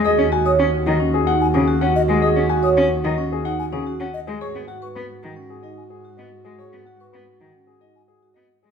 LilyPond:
<<
  \new Staff \with { instrumentName = "Flute" } { \time 4/4 \key dis \phrygian \tempo 4 = 110 dis'''16 r8 dis'''16 r4. gis''16 r8. dis''16 r16 | dis'''16 r8 dis'''16 r4. gis''16 r8. dis''16 r16 | cis'''16 r8 cis'''16 r4. gis''16 r4 r16 | cis'''16 r8 cis'''16 r4. gis''16 r4 r16 | }
  \new Staff \with { instrumentName = "Grand piano" } { \time 4/4 \key dis \phrygian dis''16 r16 gis''16 r16 cis''16 r16 dis''16 r16 gis'16 fis''16 r16 gis'16 r16 fis''16 r16 gis'16 | dis''16 r16 gis''16 r16 cis''16 r16 dis''16 r16 gis'16 fis''16 r16 gis'16 r16 fis''16 r16 gis'16 | cis''16 r16 fis''16 r16 b'16 r8. gis'16 dis''16 r16 gis'16 r16 dis''16 r16 gis'16 | cis''16 r16 fis''16 r16 b'16 r8. gis'16 dis''16 r16 gis'16 r16 dis''16 r16 gis'16 | }
  \new Staff \with { instrumentName = "French horn" } { \time 4/4 \key dis \phrygian fis'1~ | fis'2.~ fis'8. r16 | fis'1~ | fis'2.~ fis'8. r16 | }
  \new Staff \with { instrumentName = "Vibraphone" } { \time 4/4 \key dis \phrygian gis'16 r16 fis'16 cis''16 r8. cis'16 r16 dis'16 r16 cis'16 fis'16 r8. | gis'16 r16 fis'16 cis''16 r8. cis'16 r16 dis'16 r16 cis'16 fis'16 r8. | gis'16 r16 fis'16 b'16 r8. cis'16 r16 dis'16 r8 fis'16 r8. | gis'16 r16 fis'16 b'16 r8. cis'16 r16 dis'16 r8 fis'16 r8. | }
  \new Staff \with { instrumentName = "Cello" } { \time 4/4 \key dis \phrygian r16 cis'16 r8 cis'16 r16 dis16 r4 cis16 r16 cis'16 r16 gis16 | r16 cis'16 r8 cis'16 r16 dis16 r4 cis16 r16 cis'16 r16 gis16 | r16 b16 r8 b16 r16 dis16 r4. b16 r16 gis16 | r16 b16 r8 b16 r16 dis16 r4. b16 r16 gis16 | }
  \new Staff \with { instrumentName = "Double bass" } { \clef bass \time 4/4 \key dis \phrygian dis,1~ | dis,1 | gis,1~ | gis,1 | }
>>